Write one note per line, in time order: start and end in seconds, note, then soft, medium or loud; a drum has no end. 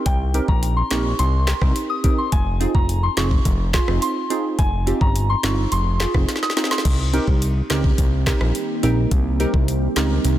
0.06 0.40 C2 loud
0.06 0.16 G5 loud
0.06 kick loud
0.06 closed hi-hat medium
0.34 0.46 C4 medium
0.34 0.46 D#4 medium
0.34 0.46 G4 medium
0.34 0.46 A#4 medium
0.34 closed hi-hat medium
0.48 0.83 A#1 medium
0.48 0.59 A#5 medium
0.48 kick medium
0.63 closed hi-hat medium
0.77 0.87 C6 medium
0.91 1.14 A#1 medium
0.91 1.02 C4 medium
0.91 1.02 D#4 medium
0.91 1.02 G4 medium
0.91 1.02 A#4 medium
0.91 1.01 C#6 medium
0.91 snare loud
0.91 clap medium
0.91 closed hi-hat medium
1.19 1.53 C2 loud
1.19 1.59 C6 medium
1.19 closed hi-hat medium
1.47 1.53 G4 medium
1.47 1.53 A#4 medium
1.47 snare loud
1.47 clap medium
1.47 closed hi-hat medium
1.61 1.73 C2 loud
1.61 1.73 C4 medium
1.61 1.73 D#4 medium
1.61 1.73 G4 medium
1.61 1.73 A#4 medium
1.61 kick medium
1.61 cross-stick medium
1.76 closed hi-hat medium
1.90 2.00 D#6 medium
2.04 2.15 C4 medium
2.04 2.15 D#4 medium
2.04 2.15 G4 medium
2.04 2.16 A#4 medium
2.04 kick loud
2.04 closed hi-hat medium
2.18 2.28 C6 medium
2.32 2.67 F1 loud
2.32 2.43 G#5 medium
2.32 kick loud
2.32 closed hi-hat medium
2.60 2.72 C4 medium
2.60 2.72 D#4 medium
2.60 2.72 F4 medium
2.60 2.72 G#4 medium
2.60 closed hi-hat medium
2.75 3.09 F1 medium
2.75 2.85 A#5 medium
2.75 kick medium
2.89 closed hi-hat medium
3.03 3.13 C6 medium
3.17 3.40 F1 medium
3.17 3.28 C4 medium
3.17 3.28 D#4 medium
3.17 3.29 F4 medium
3.17 3.29 G#4 medium
3.17 3.28 C#6 medium
3.17 snare loud
3.17 clap medium
3.17 closed hi-hat medium
3.31 kick medium
3.45 3.80 F1 loud
3.45 kick medium
3.45 closed hi-hat medium
3.74 3.79 F4 medium
3.74 3.80 G#4 medium
3.74 3.84 C6 medium
3.74 kick medium
3.74 snare loud
3.74 clap medium
3.74 closed hi-hat medium
3.88 3.99 F1 loud
3.88 3.99 C4 medium
3.88 3.99 D#4 medium
3.88 3.99 F4 medium
3.88 4.00 G#4 medium
3.88 cross-stick loud
4.02 4.42 C6 medium
4.02 closed hi-hat medium
4.30 4.42 C4 medium
4.30 4.42 D#4 medium
4.30 4.42 F4 medium
4.30 4.42 G#4 medium
4.30 closed hi-hat medium
4.59 4.93 F1 loud
4.59 4.69 G#5 loud
4.59 kick loud
4.59 closed hi-hat medium
4.87 4.98 C4 medium
4.87 4.98 D#4 medium
4.87 4.98 F4 medium
4.87 4.99 G4 medium
4.87 closed hi-hat medium
5.01 5.35 G1 medium
5.01 5.11 A#5 medium
5.01 kick medium
5.16 closed hi-hat medium
5.30 5.40 C6 medium
5.43 5.66 G1 medium
5.43 5.55 C4 medium
5.43 5.55 D#4 medium
5.43 5.55 F4 medium
5.43 5.55 G#4 medium
5.43 5.54 C#6 medium
5.43 snare loud
5.43 clap medium
5.43 closed hi-hat medium
5.72 6.06 F1 loud
5.72 6.12 C6 loud
5.72 closed hi-hat medium
6.00 6.06 F4 medium
6.00 6.06 G#4 medium
6.00 snare loud
6.00 clap medium
6.00 closed hi-hat medium
6.14 6.26 F1 loud
6.14 6.26 C4 medium
6.14 6.26 D#4 medium
6.14 6.26 F4 medium
6.14 6.26 G#4 medium
6.14 kick medium
6.14 cross-stick loud
6.29 snare medium
6.29 closed hi-hat medium
6.36 snare medium
6.43 6.53 D#6 medium
6.43 snare medium
6.50 snare medium
6.57 6.68 C4 medium
6.57 6.68 D#4 medium
6.57 6.68 F4 medium
6.57 6.68 G#4 medium
6.57 snare medium
6.57 closed hi-hat medium
6.64 snare medium
6.71 6.81 C6 medium
6.71 snare medium
6.78 snare medium
6.85 7.19 C2 loud
6.85 10.38 D#3 medium
6.85 10.38 G3 medium
6.85 10.38 A#3 medium
6.85 10.38 C4 medium
6.85 10.38 G4 medium
6.85 kick loud
6.85 closed hi-hat medium
6.85 crash loud
7.13 7.25 C4 medium
7.13 7.25 D#4 medium
7.13 7.25 G4 medium
7.13 7.25 A#4 loud
7.13 closed hi-hat medium
7.27 7.62 C2 medium
7.27 kick medium
7.42 closed hi-hat medium
7.70 7.93 C#2 medium
7.70 7.81 C4 medium
7.70 7.81 D#4 medium
7.70 7.82 G4 medium
7.70 7.82 A#4 loud
7.70 snare loud
7.70 clap medium
7.70 closed hi-hat medium
7.84 kick medium
7.98 8.33 C2 loud
7.98 kick medium
7.98 closed hi-hat medium
8.27 8.38 C4 medium
8.27 8.38 D#4 medium
8.27 8.38 G4 medium
8.27 8.38 A#4 loud
8.27 kick medium
8.27 snare loud
8.27 clap medium
8.27 closed hi-hat medium
8.41 8.52 A#1 medium
8.41 cross-stick loud
8.55 closed hi-hat medium
8.83 9.06 A#1 medium
8.83 8.95 C4 medium
8.83 8.95 D#4 medium
8.83 8.95 G4 medium
8.83 8.95 A#4 loud
8.83 closed hi-hat medium
9.11 9.46 C2 loud
9.11 kick loud
9.11 closed hi-hat medium
9.40 9.51 C4 medium
9.40 9.51 D#4 medium
9.40 9.51 G4 medium
9.40 9.51 A#4 loud
9.40 closed hi-hat medium
9.54 9.88 C2 medium
9.54 kick medium
9.68 closed hi-hat medium
9.96 10.19 C#2 medium
9.96 10.08 C4 medium
9.96 10.08 D#4 medium
9.96 10.08 G4 medium
9.96 10.08 A#4 loud
9.96 snare loud
9.96 clap medium
9.96 closed hi-hat medium
10.25 10.38 C2 loud
10.25 closed hi-hat medium